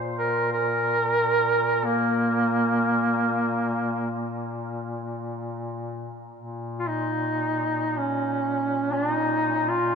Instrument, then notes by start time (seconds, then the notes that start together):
duduk
Already playing: A#2
0.19 A#4
0.52 A#4
1.85 A#3
6.35 A#2
6.80 F4
6.88 D#4
7.97 C#4
8.93 D4
9.12 D#4
9.69 F4